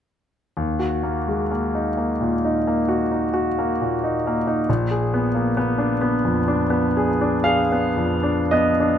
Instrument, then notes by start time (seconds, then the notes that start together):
grand piano
0.57 D#2
0.79 F#4
1.03 A#3
1.28 G#3
1.51 A#3
1.75 D#4
1.97 A#3
2.21 A#2
2.45 D#4
2.67 A#3
2.89 F#4
3.12 D#4
3.34 F#4
3.59 A#3
3.81 A#2
4.04 D#4
4.27 A#3
4.47 D#4
4.69 A#1
4.91 G#4
5.14 B3
5.35 A#3
5.57 B3
5.78 D4
6.01 B3
6.25 F2
6.48 D4
6.70 B3
6.97 G#4
7.21 D4
7.44 G#4 F5
7.72 B3
7.97 F2
8.23 D4
8.51 B3 D#5
8.80 D4